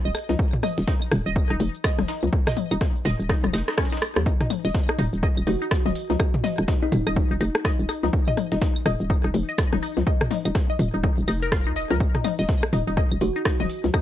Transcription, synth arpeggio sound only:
0.05 D#5
0.29 D#4
0.63 D#5
0.88 D#4
1.26 D#5
1.50 D#4
1.84 D#5
2.08 D#4
2.47 D#5
2.71 D#4
3.05 D#5
3.30 D#4
3.54 D#4
3.68 D#4
3.78 C#4
3.92 D#4
4.26 D#4
4.41 D#4
4.65 D#5
4.89 D#4
4.99 D#4
5.23 D#5
5.47 D#4
5.62 D#4
5.86 D#5
6.10 D#4
6.20 D#4
6.44 D#5
6.68 D#4
6.83 D#4
7.07 D#5
7.31 D#4
7.41 D#4
7.65 D#5
7.89 D#4
8.04 D#4
8.28 D#5
8.52 D#4
8.62 D#4
8.86 D#5
9.10 D#4
9.24 D#4
9.49 D#5
9.73 D#4
9.83 D#4
10.07 D#5
10.31 D#4
10.46 D#4
10.70 D#5
10.94 D#4
11.04 D#4
11.28 D#4
11.42 A#4
11.52 F4
11.67 D#4
11.76 D#5
11.91 A#4
12.15 D#4
12.25 D#4
12.39 D#5
12.73 D#4
12.87 D#4
12.97 D#5
13.36 D#4
13.46 D#4
13.60 D#5
13.94 D#4

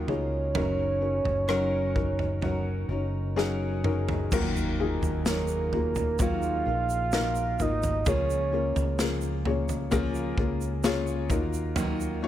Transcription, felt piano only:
Already playing: D#4 F4 F#4 G#4 A#4
0.07 D#4 F4 F#4 G#4
0.54 C#4 D#4 F#4 A#4
1.01 C#4 D#4 F#4 A#4
1.48 C#4 D#4 F#4 A#4
1.94 C#4 D#4 F#4 A#4
2.42 C#4 D#4 F#4 C#5
2.89 C#4 D#4 F#4 C#5
3.36 C#4 D#4 F#4 G#4
3.84 C#4 D#4 F#4 A#4
4.32 D#3 A#3 D#4 F4 F#4 A#4
4.79 A#3 D#4 F4 F#4 G#4
5.26 A#3 D#4 F4 F#4 C#5
5.72 A#3 D#4 F4 F#4 G#4
6.19 A#3 D#4 F4 F#4 A#4
6.67 A#3 D#4 F4 F#4 A#4
7.13 A#3 D#4 F4 F#4 A#4
7.60 A#3 D#4 F4 F#4 A#4
8.06 C#3 A#3 C#4 F4 G#4 A#4
8.52 A#3 C#4 F4 G#4 A#4
8.99 A#3 C#4 F4 G#4 A#4
9.46 A#3 C#4 F4 G#4 C#5
9.91 A#3 C#4 F4 G#4 A#4
10.38 A#3 C#4 F4 G#4 A#4
10.83 A#3 C#4 F4 G#4 C#5
11.29 D#3 A#3 D#4 F4 F#4 A#4
12.22 A#3 D#4 F4 F#4 C#5

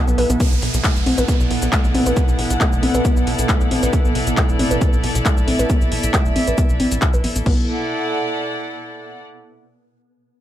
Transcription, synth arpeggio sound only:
0.08 B3
0.18 B4
0.30 B3
0.40 B3
0.84 A3
1.06 C4
1.18 B4
1.28 B3
1.73 A3
1.95 C4
2.06 B4
2.17 B3
2.61 A3
2.83 C4
2.94 B4
3.05 B3
3.49 A3
3.71 C4
3.83 B4
3.93 B3
4.37 A3
4.59 C4
4.71 B4
4.81 B3
5.25 A3
5.48 C4
5.59 B4
5.70 B3
6.14 A3
6.36 C4
6.47 B4
6.58 B3
6.80 C4
7.02 F#4
7.14 B4
7.24 B3
7.36 B3
7.46 B3

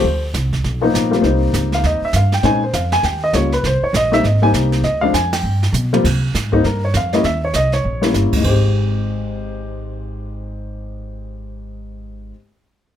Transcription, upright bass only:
0.03 D2
0.34 C2
0.64 B1
0.94 A#1
1.24 C2
1.53 C#2
1.84 D#2
2.02 muted upright bass stroke
2.13 G2
2.43 A#2
2.74 F2
3.03 D#2
3.33 C#2
3.63 C2
3.82 muted upright bass stroke
3.93 A#1
4.23 G#1
4.53 C2
4.83 D2
5.14 F2
5.43 G2
5.73 B2
6.05 C3
6.34 G#2
6.64 G2
6.94 F2
7.24 D#2
7.54 C2
7.84 A#1
8.14 G1
8.32 muted upright bass stroke
8.44 G#1

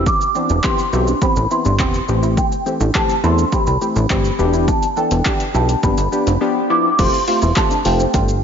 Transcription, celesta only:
0.07 D6
0.65 C6
1.22 B5
1.51 C6
2.38 G5
2.96 A5
3.24 C6
3.53 B5
4.69 A5
4.97 G5
5.55 A5
5.84 B5
6.70 D6
6.99 C6
7.57 A5
7.86 G5

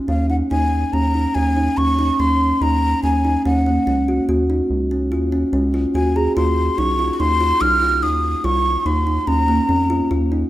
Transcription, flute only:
0.09 F5
0.30 F#5
0.51 G#5
0.93 A#5
1.35 G#5
1.77 C#6
2.20 C6
2.62 A#5
3.04 G#5
3.46 F#5
5.95 G#5
6.16 A#5
6.36 C6
6.78 C#6
7.13 C#6
7.20 C6
7.61 F6
8.03 D#6
8.45 C#6
8.86 C6
9.28 A#5

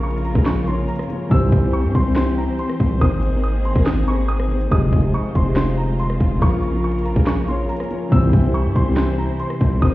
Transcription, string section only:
Already playing: C#3 A#3 F4 A#4
1.31 E3 C4 G4 C5
3.01 D#3 A#3 G#4
4.71 D#3 G#3 F4 C5
6.42 C#3 A#3 A#4
8.12 C3 G3 E4 C5
9.82 G#3 D#4 A#4

